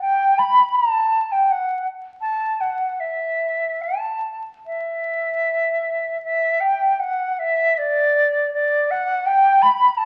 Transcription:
0.01 G5
0.38 B5
0.76 A5
1.32 G5
1.51 F#5
2.21 A5
2.60 F#5
3.00 E5
3.82 A5
4.66 E5
6.24 E5
6.60 G5
6.99 F#5
7.32 F#5
7.39 E5
7.78 D5
8.54 D5
8.91 F#5
9.26 G5
9.62 B5
9.97 A5

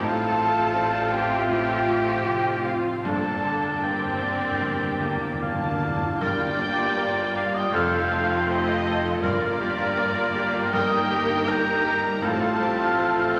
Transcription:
0.00 A1 A2 A3 C4 F4 A4 C5 F5 A5
0.37 A3 C5
0.74 C4 F4 D5
1.11 F4 G4 C5 G5
1.48 A2 G4 G5
1.87 A3 F4
2.25 F1 C4 D#5
2.64 F4 C5 F5
3.03 G1 G2 A#3 D4 A4 D5 G5 A5
3.13 G2
3.20 G2
3.28 G2
3.36 G2
3.43 G2 D3 D5
3.51 G2
3.60 G2
3.66 G2
3.74 G2
3.81 G2 A#3 C4 D4 G4 A#4 G5
3.90 G2
3.98 G2
4.05 G2
4.12 G2
4.19 G2 D4 D5
4.27 G2
4.35 G2
4.43 G2
4.51 G2
4.59 G2 D3
4.67 G2
4.75 G2
4.82 G2
4.90 G2
4.99 G2 D3 A#3 D5
5.08 G2
5.16 G2
5.25 G2
5.33 G2
5.41 G2 A#3 D4 F5 A5
5.48 G2
5.56 G2
5.63 G2
5.71 G2
5.79 G2 D5
5.83 D4
5.87 G2
5.95 G2
6.02 G2
6.11 G2
6.20 G1 G2 G3 A#3 F4 A#4 D5 G5 F6
6.40 F4
6.60 D5
6.79 F4
6.97 F4 A#4
7.17 F4
7.36 D5 F5
7.54 F4 D#5 G5
7.73 F1 F2 A3 C4 A4 C5 F5 F6
7.93 F4
8.11 F4 A4
8.31 F4
8.48 F4 G4 C5 D#5
8.67 F4
8.86 A4
9.05 F4
9.22 G1 G2 G3 A#3 A#4 D5 F6
9.43 F4
9.60 G4
9.78 F4
9.97 F4 A#4
10.16 F4
10.35 F4 G4
10.54 F4
10.73 G2 D#4 A#4 D#5 G5 D#6
10.92 D#4
11.11 G4
11.29 D#4
11.48 D#4 A#4 G5 A#5
11.67 D#4
11.84 G4
12.04 D#4
12.22 A1 A2 A3 C4 F4 A4 F5 A5 F6
12.41 F4
12.61 G4 C5
12.79 F4
12.97 F3 F4 C5
13.16 F4
13.35 D#4 C5 D#5 G5

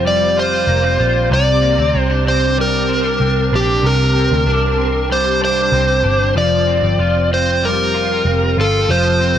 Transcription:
Already playing: F1 F3 C4 F4
0.05 G3 D5
0.37 F4 C5
0.67 F1 A#3
0.83 C4
0.99 A#1 F4
1.30 C2 C3 D5
1.62 A#3
1.78 D2 C4
1.94 C2 C4
2.01 C5
2.10 D4
2.26 C4 C5
2.57 G3 A#4
2.89 C4
3.04 D4
3.20 C2 C4
3.52 A#1 D4 G4
3.83 C2 C3 A#4
4.16 C4
4.32 D2
4.47 C2 D4
4.78 C4
5.10 G3 C5
5.40 D4
5.45 C5
5.72 C2 C4
6.03 G1 D4
6.35 F1 F3 D5
6.67 C4
6.83 G1
6.98 F1 F4
7.31 C4 C5
7.63 G3 A#4
7.94 F4
8.25 F1 C4
8.57 G1 F4 A4
8.89 F1 F3 C5
9.20 C4

